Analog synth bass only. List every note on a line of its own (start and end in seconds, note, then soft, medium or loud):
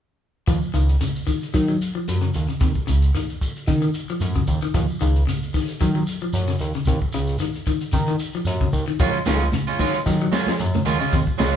0.48 0.60 D#2 medium
0.74 0.97 C#2 medium
1.54 1.77 D#3 medium
2.08 2.31 F#2 medium
2.36 2.47 D#2 medium
2.50 2.56 D#2 soft
2.61 2.73 D#2 medium
2.89 3.11 C#2 medium
3.67 3.90 D#3 medium
4.21 4.44 F#2 medium
4.48 4.60 D#2 medium
4.63 4.69 D#2 soft
4.74 4.87 D#2 medium
5.01 5.24 C#2 loud
5.81 6.03 D#3 medium
6.34 6.56 F#2 medium
6.60 6.73 D#2 medium
6.75 6.81 D#2 soft
6.87 7.00 D#2 medium
7.14 7.37 C#2 medium
7.94 8.16 D#3 loud
8.47 8.69 F#2 medium
8.73 8.85 D#2 medium
8.89 8.94 D#2 soft
9.00 9.12 D#2 loud
9.27 9.49 C#2 medium
10.06 10.29 D#3 medium
10.60 10.82 F#2 medium
10.86 10.98 D#2 medium
11.01 11.07 D#2 soft
11.13 11.25 D#2 medium
11.39 11.56 C#2 medium